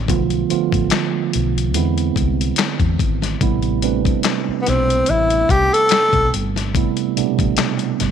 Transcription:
0.08 0.42 B1 loud
0.08 0.42 D3 medium
0.08 0.42 F3 medium
0.08 0.43 A3 medium
0.08 0.43 B3 medium
0.08 0.43 F4 medium
0.08 kick loud
0.08 closed hi-hat medium
0.30 closed hi-hat soft
0.49 1.74 D3 medium
0.49 1.75 F3 medium
0.49 1.75 A3 medium
0.49 1.74 B3 medium
0.49 1.75 F4 medium
0.49 muted fretless electric bass stroke soft
0.49 closed hi-hat medium
0.72 0.88 A1 medium
0.72 kick loud
0.72 closed hi-hat soft
0.90 snare loud
0.90 clap medium
0.90 closed hi-hat medium
1.33 1.77 B1 medium
1.33 closed hi-hat medium
1.58 closed hi-hat soft
1.74 2.10 E2 medium
1.74 3.09 D3 medium
1.74 3.10 G#3 medium
1.74 3.10 B3 medium
1.74 3.10 C4 medium
1.74 3.10 E4 loud
1.74 closed hi-hat medium
1.98 closed hi-hat soft
2.16 2.50 C2 medium
2.16 kick medium
2.16 closed hi-hat medium
2.41 closed hi-hat soft
2.56 snare loud
2.56 clap medium
2.56 closed hi-hat medium
2.80 2.96 E2 medium
2.80 kick medium
2.80 closed hi-hat soft
2.99 3.34 G#1 medium
2.99 kick medium
2.99 closed hi-hat medium
3.22 snare soft
3.22 closed hi-hat medium
3.41 4.09 A1 loud
3.41 3.75 C3 medium
3.41 3.75 G3 medium
3.41 3.76 A3 medium
3.41 3.76 B3 medium
3.41 3.76 E4 loud
3.41 kick loud
3.41 closed hi-hat medium
3.63 closed hi-hat soft
3.82 5.18 G3 medium
3.82 5.18 A3 medium
3.82 5.18 C4 medium
3.82 5.19 D4 medium
3.82 5.18 B4 medium
3.82 closed hi-hat medium
4.05 kick loud
4.05 closed hi-hat medium
4.23 snare loud
4.23 clap medium
4.23 closed hi-hat medium
4.48 muted fretless electric bass stroke soft
4.62 4.70 B3 medium
4.67 5.01 B1 medium
4.67 5.12 C4 medium
4.67 snare soft
4.67 closed hi-hat medium
4.90 closed hi-hat soft
5.06 5.42 A1 medium
5.06 5.53 E4 medium
5.06 closed hi-hat medium
5.30 closed hi-hat soft
5.49 5.68 C2 medium
5.49 5.75 G4 loud
5.49 kick medium
5.49 closed hi-hat medium
5.73 6.34 A4 loud
5.73 closed hi-hat medium
5.89 snare loud
5.89 clap medium
5.89 closed hi-hat medium
6.13 6.30 B1 medium
6.13 kick medium
6.13 closed hi-hat soft
6.34 6.85 G1 medium
6.34 closed hi-hat medium
6.56 snare soft
6.56 closed hi-hat medium
6.75 7.09 C3 medium
6.75 7.09 G3 medium
6.75 7.09 A3 medium
6.75 7.10 B3 medium
6.75 7.10 E4 medium
6.75 kick loud
6.75 closed hi-hat medium
6.97 closed hi-hat soft
7.16 7.23 B2 medium
7.16 8.11 G3 medium
7.16 8.11 A3 medium
7.16 8.11 B3 medium
7.16 8.11 D4 medium
7.16 muted fretless electric bass stroke soft
7.16 closed hi-hat medium
7.23 8.11 C3 medium
7.39 7.55 A1 medium
7.39 kick loud
7.39 closed hi-hat medium
7.57 snare loud
7.57 clap medium
7.57 closed hi-hat medium
7.79 closed hi-hat soft
8.00 8.11 G1 medium
8.00 snare soft
8.00 closed hi-hat medium

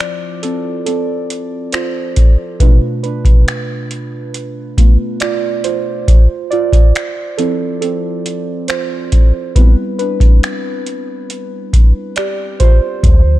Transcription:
0.00 2.56 F3 medium
0.00 0.43 C4 soft
0.00 2.57 E4 medium
0.00 1.75 F4 medium
0.00 1.73 C5 medium
0.00 0.45 D5 loud
0.00 finger snap loud
0.00 closed hi-hat medium
0.43 0.84 C4 medium
0.43 0.85 A4 medium
0.43 closed hi-hat medium
0.86 1.70 C4 medium
0.86 1.76 A4 medium
0.86 closed hi-hat medium
1.30 closed hi-hat medium
1.72 2.57 F4 medium
1.72 2.63 C5 medium
1.72 finger snap loud
1.72 closed hi-hat medium
2.16 kick medium
2.16 closed hi-hat medium
2.60 6.05 B2 soft
2.60 4.77 A3 medium
2.60 3.02 D4 medium
2.60 4.77 F4 medium
2.60 3.02 B4 medium
2.60 kick loud
2.60 closed hi-hat medium
3.03 4.74 D4 medium
3.03 4.73 B4 medium
3.03 closed hi-hat soft
3.25 kick medium
3.25 closed hi-hat medium
3.48 finger snap loud
3.48 closed hi-hat medium
3.91 closed hi-hat medium
4.34 closed hi-hat medium
4.78 5.17 A3 soft
4.78 5.17 B3 soft
4.78 5.18 F4 medium
4.78 kick medium
4.78 closed hi-hat medium
5.20 5.62 F4 medium
5.20 5.66 D5 loud
5.20 finger snap loud
5.20 closed hi-hat medium
5.64 6.48 F4 medium
5.64 6.54 C5 medium
5.64 closed hi-hat medium
6.08 kick loud
6.08 closed hi-hat medium
6.51 7.35 F4 medium
6.51 7.41 D5 loud
6.51 closed hi-hat soft
6.73 kick medium
6.73 closed hi-hat medium
6.95 finger snap loud
6.95 closed hi-hat medium
7.37 8.65 F3 medium
7.37 7.79 C4 medium
7.37 8.65 E4 medium
7.37 7.80 A4 medium
7.37 closed hi-hat medium
7.81 8.66 C4 medium
7.81 8.71 A4 medium
7.81 closed hi-hat medium
8.26 closed hi-hat medium
8.68 9.53 F4 medium
8.68 9.58 C5 medium
8.68 finger snap loud
8.68 closed hi-hat medium
9.12 kick medium
9.12 closed hi-hat medium
9.55 10.14 G3 medium
9.55 10.14 B3 soft
9.55 10.15 C4 medium
9.55 9.97 E4 medium
9.55 9.98 B4 medium
9.55 kick loud
9.55 closed hi-hat medium
9.99 11.70 D4 medium
9.99 11.69 B4 medium
9.99 closed hi-hat soft
10.20 kick medium
10.20 closed hi-hat soft
10.43 finger snap loud
10.43 closed hi-hat medium
10.86 closed hi-hat medium
11.30 closed hi-hat medium
11.73 kick medium
11.73 closed hi-hat medium
12.16 12.58 G4 medium
12.16 12.61 D5 medium
12.16 finger snap loud
12.16 closed hi-hat medium
12.60 13.39 F4 medium
12.60 13.39 C5 medium
12.60 kick loud
12.60 closed hi-hat medium
13.03 13.39 D2 loud
13.03 13.39 D3 medium
13.03 13.39 F3 medium
13.03 13.39 A3 medium
13.03 13.39 C4 medium
13.03 kick loud
13.03 closed hi-hat medium

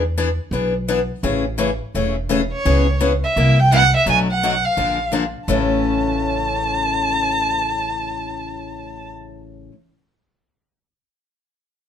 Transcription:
0.00 0.37 E2 medium
0.18 0.28 E3 medium
0.18 0.28 B3 medium
0.18 0.28 D4 medium
0.18 0.28 G#4 loud
0.51 1.08 B1 medium
0.51 0.73 E3 medium
0.51 0.73 B3 medium
0.51 0.73 D4 medium
0.51 0.73 G#4 medium
0.88 0.99 E3 medium
0.88 0.99 B3 medium
0.88 0.99 D4 medium
0.88 0.99 G#4 medium
1.23 1.80 A1 medium
1.23 1.44 C#3 medium
1.23 1.44 E3 medium
1.23 1.44 A3 medium
1.23 1.44 C#4 medium
1.23 1.44 G#4 medium
1.58 1.69 C#3 medium
1.58 1.69 E3 medium
1.58 1.69 A3 medium
1.58 1.69 C#4 medium
1.58 1.69 G#4 loud
1.95 2.51 E1 medium
1.95 2.15 C#3 medium
1.95 2.15 E3 medium
1.95 2.15 A3 medium
1.95 2.15 C#4 medium
1.95 2.15 G#4 medium
2.29 2.40 C#3 medium
2.29 2.40 E3 medium
2.29 2.40 A3 medium
2.29 2.41 C#4 medium
2.29 2.41 G#4 loud
2.52 2.98 C#5 medium
2.65 3.22 C#2 medium
2.65 2.86 C#3 medium
2.65 2.86 E3 medium
2.65 2.86 B3 medium
2.65 2.86 C#4 medium
2.65 2.86 G#4 medium
3.01 3.11 C#3 medium
3.01 3.11 E3 medium
3.01 3.11 B3 medium
3.01 3.12 C#4 medium
3.01 3.11 G#4 medium
3.24 3.61 E5 medium
3.36 3.93 C2 medium
3.36 3.57 C3 medium
3.36 3.57 G3 medium
3.36 3.57 A#3 medium
3.36 3.57 E4 medium
3.36 3.57 G4 medium
3.60 3.72 G5 medium
3.72 3.82 C3 medium
3.72 3.82 G3 medium
3.72 3.83 A#3 medium
3.72 3.83 E4 medium
3.72 3.83 G4 medium
3.72 3.92 F#5 loud
3.96 4.07 E5 medium
4.06 4.63 B1 medium
4.06 4.27 B2 medium
4.06 4.27 F#3 medium
4.06 4.27 A3 medium
4.06 4.28 D4 medium
4.06 4.27 F#4 medium
4.06 4.18 G#5 medium
4.31 4.67 F#5 medium
4.43 4.53 B2 medium
4.43 4.54 F#3 medium
4.43 4.53 A3 medium
4.43 4.54 D4 medium
4.43 4.54 F#4 medium
4.65 5.14 F5 medium
4.77 5.34 A#1 medium
4.77 4.98 D3 medium
4.77 4.98 F3 medium
4.77 4.98 A#3 medium
4.77 4.98 D4 medium
4.77 4.98 G#4 medium
5.12 5.23 D3 medium
5.12 5.23 F3 medium
5.12 5.23 A#3 medium
5.12 5.24 D4 medium
5.12 5.24 G#4 medium
5.48 9.67 A1 medium
5.48 9.71 A2 medium
5.48 9.72 C#3 medium
5.48 9.72 E3 medium
5.48 9.73 A3 medium
5.48 9.73 C#4 medium
5.48 9.07 A5 medium

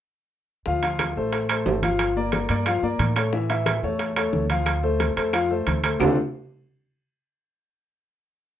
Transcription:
0.66 1.13 D2 medium
0.66 0.80 F3 medium
0.66 0.80 F4 medium
0.66 0.80 F5 medium
0.66 high bongo medium
0.66 high conga soft
0.83 1.10 F3 medium
0.83 1.10 F4 medium
0.83 1.11 F5 medium
0.83 high bongo soft
0.83 high conga soft
0.83 high timbale medium
0.99 high bongo medium
0.99 high conga medium
0.99 high timbale medium
0.99 claves medium
1.16 1.63 A1 medium
1.16 1.44 A3 medium
1.16 1.44 A4 medium
1.16 1.44 C5 medium
1.16 high conga soft
1.33 high bongo medium
1.33 high conga soft
1.33 high timbale medium
1.49 1.77 A3 medium
1.49 1.77 A4 medium
1.49 1.78 C5 medium
1.49 high bongo soft
1.49 high conga soft
1.49 high timbale loud
1.49 claves medium
1.66 2.44 G1 medium
1.66 high bongo soft
1.66 low bongo medium
1.66 high conga medium
1.66 low timbale medium
1.82 2.10 F3 medium
1.82 2.10 F4 medium
1.82 2.10 F5 medium
1.82 high bongo soft
1.82 high conga medium
1.82 high timbale medium
1.99 high bongo medium
1.99 high conga soft
1.99 high timbale medium
1.99 claves medium
2.16 2.44 A#3 medium
2.16 2.44 A#4 medium
2.16 2.44 D5 medium
2.16 high bongo soft
2.16 high conga soft
2.32 high bongo medium
2.32 high conga loud
2.32 high timbale medium
2.49 2.80 G2 medium
2.49 2.63 A#3 medium
2.49 2.63 A#4 medium
2.49 2.64 D5 medium
2.49 high conga soft
2.49 high timbale medium
2.66 2.80 F3 medium
2.66 2.80 F4 medium
2.66 2.80 F5 medium
2.66 high bongo medium
2.66 high conga soft
2.66 high timbale medium
2.66 claves medium
2.82 2.98 G2 medium
2.82 3.10 A#3 medium
2.82 3.10 A#4 medium
2.82 3.11 D5 medium
2.82 high bongo soft
2.82 high conga soft
2.99 3.77 A2 medium
2.99 high bongo soft
2.99 low bongo medium
2.99 high conga medium
2.99 high timbale medium
3.16 3.30 A3 medium
3.16 3.30 A4 medium
3.16 3.30 C#5 medium
3.16 high bongo soft
3.16 high conga soft
3.16 high timbale medium
3.16 claves medium
3.33 3.47 E3 medium
3.33 3.47 E4 medium
3.33 3.47 E5 medium
3.33 high bongo medium
3.33 high conga soft
3.49 3.77 E3 medium
3.49 3.77 E4 medium
3.49 3.77 E5 medium
3.49 high bongo soft
3.49 high conga soft
3.49 high timbale medium
3.66 high bongo medium
3.66 high conga medium
3.66 high timbale medium
3.66 claves medium
3.83 4.29 E2 medium
3.83 4.11 A3 medium
3.83 4.11 A4 medium
3.83 4.11 C#5 medium
3.83 high conga soft
3.99 high bongo medium
3.99 high conga soft
3.99 high timbale medium
4.16 4.44 A3 medium
4.16 4.44 A4 medium
4.16 4.44 C#5 medium
4.16 high bongo soft
4.16 high conga soft
4.16 high timbale loud
4.16 claves medium
4.33 5.11 D2 medium
4.33 high bongo soft
4.33 low bongo medium
4.33 high conga medium
4.49 4.77 F3 medium
4.49 4.77 F4 medium
4.49 4.78 F5 medium
4.49 high bongo soft
4.49 high conga medium
4.49 high timbale medium
4.66 high bongo medium
4.66 high conga soft
4.66 high timbale medium
4.66 claves medium
4.83 5.10 A3 medium
4.83 5.11 A4 medium
4.83 5.11 C5 medium
4.83 high bongo soft
4.83 high conga soft
5.00 high bongo medium
5.00 high conga medium
5.00 high timbale medium
5.16 5.63 F2 medium
5.16 5.30 A3 medium
5.16 5.30 A4 medium
5.16 5.30 C5 medium
5.16 high conga soft
5.16 high timbale medium
5.33 5.47 F3 medium
5.33 5.47 F4 medium
5.33 5.47 F5 medium
5.33 high bongo medium
5.33 high conga soft
5.33 high timbale medium
5.33 claves medium
5.50 5.78 A3 medium
5.50 5.78 A4 medium
5.50 5.78 C5 medium
5.50 high bongo soft
5.50 high conga soft
5.67 5.96 D2 medium
5.67 high bongo soft
5.67 low bongo medium
5.67 high conga medium
5.67 high timbale medium
5.83 5.97 A3 medium
5.83 5.97 A4 medium
5.83 5.97 C5 medium
5.83 high bongo soft
5.83 high conga soft
5.83 high timbale loud
5.83 claves medium
6.00 6.16 D2 medium
6.00 6.15 D3 medium
6.00 6.15 A3 medium
6.00 6.16 C4 medium
6.00 6.16 D4 medium
6.00 6.16 F4 medium
6.00 6.16 A4 medium
6.00 low bongo loud
6.00 low conga loud
6.00 low timbale medium
6.00 claves loud

